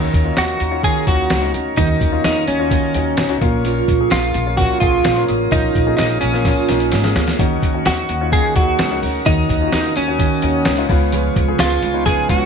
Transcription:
Already playing: D#3 A#3 C#4 D#4 F#4 A#4 D#5 A#5 C#6
0.14 D#2, kick, closed hi-hat
0.25 C#4 D#4 F4
0.37 D#2 C#4 F#4 A#4, snare, closed hi-hat
0.59 D#2 C#4 F#4 A#4, closed hi-hat
0.71 C#4 D#4 F4
0.83 D#3 A#3 C#4 F#4 G#4 A#4, kick, closed hi-hat
1.06 D#2 C#4 D#4 F4 F#4, kick, closed hi-hat
1.30 C#2 A#3 C#4 F#4 A#4, snare, closed hi-hat
1.42 C#4 D#4 F#4, closed hi-hat
1.54 D2 C#4 F#4 A#4, closed hi-hat
1.77 D#2 D#3 A#3 C#4 D#4 F#4 A#4, kick, closed hi-hat
2.01 D#2, kick, closed hi-hat
2.12 C#4 D#4 F4
2.24 D#2 A#3 C#4 D#4 F#4 A#4, snare, closed hi-hat
2.47 D#2 C#4 F#4 A#4, closed hi-hat
2.60 C#4 D#4 F4
2.70 D#3 A#3 C#4 F#4 A#4, kick, closed hi-hat
2.94 D#2 C#4 D#4 F#4, closed hi-hat
3.17 C#2 A#3 C#4 F#4 A#4, snare, closed hi-hat
3.29 C#4 D#4 F#4, closed hi-hat
3.41 A#1 A#2 A#3 C#4 F4 A#4 C#5 F5, kick, closed hi-hat
3.64 A#2 F3 A#3 C#4 F4 A#4, closed hi-hat
3.88 A#1, kick, closed hi-hat
4.00 A#3 C#4 G#4
4.11 A#1 A#3 F4 A#4, snare, closed hi-hat
4.34 A#1, closed hi-hat
4.47 A#3 C#4 F4
4.57 A#2 F3 A#3 C#4 F4 F#4 A#4, kick, closed hi-hat
4.80 A#1 A#3 C#4 F4 G#4, kick, closed hi-hat
5.04 A#1 A#3 C#4 F4 A#4, snare, closed hi-hat
5.16 A#3 C#4 F4, closed hi-hat
5.28 A1 A#2 A#3 C#4 F4 A#4 D#6, closed hi-hat
5.51 A#1 A#2 F3 A#3 C#4 D#4 F4 A#4, kick, closed hi-hat
5.75 A#1, kick, closed hi-hat
5.87 A#3 C#4 G#4
5.97 A#1 A#3 C#4 D#4 F4, snare, closed hi-hat
6.21 A#1 A#3 C#4 F4 A#4, closed hi-hat
6.33 A#3 C#4 F4, snare
6.45 A#2 F3 A#3 C#4 F4 A#4, kick, snare, closed hi-hat
6.69 A#1 A#3 C#4 D#4, snare, closed hi-hat
6.80 closed hi-hat
6.91 G#1 A#3 C#4 F4 A#4, snare, closed hi-hat
7.04 A#3 C#4 G#4, snare, closed hi-hat
7.15 D2 A#3 C#4 F4 A#4, snare, closed hi-hat
7.28 snare
7.39 D#2 D#3 A#3 C#4 D#4 F#4 A#4 D#5 F#5 C#6, kick, closed hi-hat
7.62 D#2, kick, closed hi-hat
7.74 C#4 D#4 F#4
7.85 D#2 A#3 C#4 F#4 A#4, snare, closed hi-hat
8.09 D#2, closed hi-hat
8.21 C#4 D#4 F4
8.32 D#3 A#3 C#4 F#4 G#4 A#4, kick, closed hi-hat
8.56 D#2 C#4 D#4 F#4 G#4, kick, closed hi-hat
8.79 C#2 A#3 C#4 F#4 A#4, snare, closed hi-hat
8.90 C#4 D#4 F#4, closed hi-hat
9.02 D2 C#4 F#4 A#4, open hi-hat
9.25 D#2 D#3 A#3 C#4 D#4 F#4 A#4 D#6, kick, closed hi-hat
9.49 D#2, kick, closed hi-hat
9.61 C#4 D#4 F4
9.67 F#4
9.72 D#2 A#3 C#4 D#4 F#4 A#4, snare, closed hi-hat
9.96 D#2 C#4 F#4 A#4, closed hi-hat
10.08 C#4 D#4 F#4
10.19 D#3 A#3 C#4 F#4 A#4, kick, closed hi-hat
10.42 D#2 C#4 D#4 F#4, closed hi-hat
10.65 C#2 A#3 C#4 F#4 A#4, snare, closed hi-hat
10.77 C#4 D#4 F4, closed hi-hat
10.88 C#2 C#3 G#3 B3 C#4 F4 B4 F5 G#5 C#6, kick, open hi-hat
11.12 C#3 F3 G#3 C#4 F4 B4, closed hi-hat
11.36 C#2, kick, closed hi-hat
11.48 B3 C#4 G#4
11.59 C#2 G#3 C#4 F4 B4, snare, closed hi-hat
11.82 C#2 G#3 C#4 F4 B4, closed hi-hat
11.94 B3 C#4 D#4
12.05 C#3 F3 G#3 C#4 F4 G#4 B4, kick, closed hi-hat
12.29 C#2 B3 C#4 F4 F#4, kick, closed hi-hat

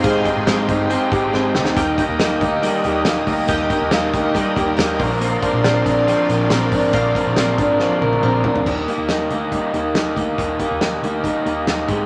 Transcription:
Already playing: G#3 C4 D#4 G4 G#4 C5 D#5 F5 G5 C6
0.03 G#1 G#3 C4 D#4 G4 G#4 C5 D#5 F5, kick, closed hi-hat
0.24 C4 D#4 G4 G#4 C5 D#5 G5, kick, closed hi-hat
0.37 G#1
0.46 G#1 G#3 C4 D#4 G4 G#4 C5 D#5 A#5, snare, closed hi-hat
0.69 G1 C4 D#4 G4, kick, closed hi-hat
0.90 G#3 C4 D#4 G4 G#4 C5 D#5 G5, closed hi-hat
1.12 G#1 C4 D#4 G4, kick, closed hi-hat
1.33 G#1 G#3 C4 D#4 G4 G#4 C5 D#5 G5, snare
1.54 D2 C4 D#4 G4, snare
1.65 snare
1.76 D#2 D#3 G3 A#3 D#4 G4 A#4 D#5 G5 D#6, kick, closed hi-hat
1.97 A#3 D#4 G4 A#4 D#5 G5, kick, closed hi-hat
2.09 D#2
2.19 D#2 G3 A#3 D#4 G4 A#4 D#5 G5, snare, closed hi-hat
2.41 D2 A#3 D#4 G4, kick, closed hi-hat
2.62 D#3 G3 A#3 D#4 G4 A#4 D#5 G5, snare, closed hi-hat
2.84 D#2 A#3 D#4 G4, closed hi-hat
3.05 D#2 G3 A#3 D#4 G4 A#4 D#5 F5, snare, closed hi-hat
3.26 D2 A#3 D#4 G4, kick, open hi-hat
3.48 D#2 D#3 G3 A#3 D#4 G4 A#4 D#5 G5, kick, closed hi-hat
3.70 A#3 D#4 G4 A#4 D#5 G5, kick, closed hi-hat
3.81 D#2
3.91 D#2 G3 A#3 D#4 G4 A#4 D#5 F5, snare, closed hi-hat
4.14 D2 A#3 D#4 G4, kick, closed hi-hat
4.34 D#3 G3 A#3 D#4 G4 A#4 D#5 G5, kick, snare, closed hi-hat
4.56 D#2 A#3 D#4 G4, kick, closed hi-hat
4.76 D#2 G3 A#3 D#4 G4 A#4 D#5 G5, snare, closed hi-hat
4.81 G4
4.98 A#1 A#2 F3 C4 D4 A#4 C5 D5 F5 C6, kick, open hi-hat
5.21 A#2 D3 F3 C4 D4 A#4, closed hi-hat
5.42 F3 C4 D4 A#4 C5 D5 F5, kick, closed hi-hat
5.53 A#1
5.64 A#1 F3 C4 D4 A#4 C5 D5 G5, snare, closed hi-hat
5.84 A#1 F3 C4 D4 A#4, kick, closed hi-hat
6.07 A#2 D3 F3 C4 D4 A#4 C5 D5 G5, snare, closed hi-hat
6.28 A#1 F3 C4 D4 A#4, closed hi-hat
6.50 A#1 F3 C4 D4 A#4 C5 D5 G5, snare, closed hi-hat
6.72 G#1 F3 C4 D4 A#4, kick, open hi-hat
6.93 A#1 A#2 D3 F3 C4 D4 A#4 C5 D5 F5, kick, closed hi-hat
7.15 F3 C4 D4 A#4 C5 D5 F5, kick, closed hi-hat
7.26 A#1
7.36 A#1 F3 C4 D4 A#4 C5 D5 F5, snare, closed hi-hat
7.58 G#1 F3 C4 D4 A#4, kick, closed hi-hat
7.79 A#2 D3 F3 C4 D4 A#4 C5 D5 F5, snare
8.00 A#1 F3 C4 D4 A#4, high tom
8.13 high tom
8.22 A#1 F3 C4 D4 A#4 C5 D5 F5, mid tom
8.44 D2 F3 C4 D4 A#4, floor tom
8.56 floor tom
8.66 D#2 D#3 G3 A#3 D#4 G4, kick, crash
8.88 A#3 D#4 G4, closed hi-hat
8.98 D#2
9.09 D#2 D#3 G3 A#3 D#4 G4, snare, closed hi-hat
9.30 D2 A#3 D#4 G4, closed hi-hat
9.52 G3 A#3 D#4 G4, kick, closed hi-hat
9.73 D#2 A#3 D#4 G4, closed hi-hat
9.95 D#2 D#3 G3 A#3 D#4 G4, snare, closed hi-hat
10.16 D2 A#3 D#4 G4, kick, closed hi-hat
10.38 D#2 D#3 G3 A#3 D#4 G4, kick, closed hi-hat
10.59 A#3 D#4 G4, kick, closed hi-hat
10.71 D#2
10.80 D#2 D#3 G3 A#3 D#4 G4, snare, closed hi-hat
11.02 D2 A#3 D#4 G4, closed hi-hat
11.24 G3 A#3 D#4 G4, kick, closed hi-hat
11.45 D#2 A#3 D#4 G4, closed hi-hat
11.66 D#2 D#3 G3 A#3 D#4 G4, snare, closed hi-hat
11.88 G#1 G#3 C4 D#4 G4, kick, closed hi-hat

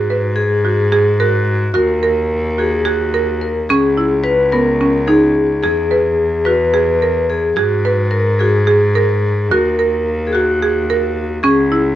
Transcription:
Already playing: G#2 F#4
0.10 B4
0.36 G#4
0.65 F#4
0.92 G#4
1.20 F#4 A#4
1.74 D#2 F#4 A#4
2.03 A#4
2.58 F#4 G#4
2.85 F#4 G#4
3.14 A#4
3.41 A#4
3.69 C#2 C#4 G#4
3.97 E4
4.24 B4
4.52 B3 A#4
4.81 C#4
5.07 D#4 G#4
5.63 E2 G#4
5.91 B4
6.45 F#4 B4
6.74 G#4
7.02 A#4
7.30 G#4
7.56 G#2 F#4 G#4
7.85 B4
8.11 A#4
8.39 F#4 G#4
8.67 G#4
8.95 A#4
9.51 D#2 F#4 A#4
9.79 A#4
10.27 G#4
10.33 F#4
10.63 G#4
10.90 A#4
11.43 C#2 C#4 G#4
11.72 E4

